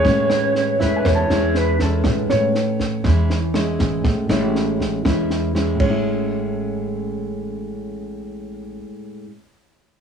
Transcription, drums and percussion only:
0.05 kick, snare
0.30 cross-stick, snare
0.55 snare
0.80 kick, snare
1.05 kick, cross-stick, snare
1.30 snare
1.55 snare
1.79 kick, snare
2.04 kick, cross-stick, snare
2.30 snare
2.55 snare
2.80 kick, snare
3.04 kick, cross-stick, snare
3.30 snare
3.54 cross-stick, snare
3.79 kick, snare
4.04 kick, snare
4.30 cross-stick, snare
4.55 snare
4.80 kick, snare
5.05 kick, cross-stick, snare
5.30 snare
5.55 snare
5.80 kick, crash

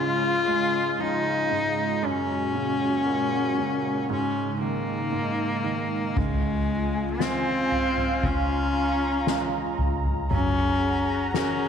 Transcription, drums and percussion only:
6.17 kick, floor tom, crash
7.20 snare
7.72 floor tom
7.97 floor tom
8.23 kick
9.27 snare
9.78 floor tom
10.05 floor tom
10.31 floor tom
11.34 snare

